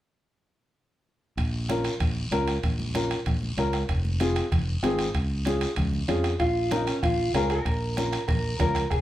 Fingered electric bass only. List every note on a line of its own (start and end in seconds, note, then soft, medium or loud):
1.37 1.88 A#1 loud
2.00 2.26 A#1 loud
2.31 2.57 C#2 medium
2.63 3.14 A#1 loud
3.26 3.51 A#1 medium
3.57 3.83 C#2 medium
3.89 4.39 F1 loud
4.52 4.77 F1 medium
4.83 5.08 G#1 medium
5.14 5.65 C#2 medium
5.77 6.02 C#2 loud
6.08 6.34 F2 medium
6.40 6.90 A#1 medium
7.03 7.28 A#1 medium
7.34 7.59 C#2 medium
7.65 8.16 A#1 medium
8.28 8.54 A#1 loud
8.59 8.85 C#2 medium
8.91 9.01 F1 medium